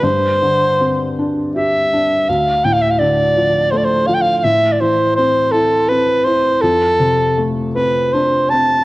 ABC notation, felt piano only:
X:1
M:3/4
L:1/8
Q:1/4=82
K:Gmix
V:1 name="Felt piano"
G,, D, C D G D | D,, A,, D, F, A, F, | A,, E, C E C E | F,, C, A, C D C |]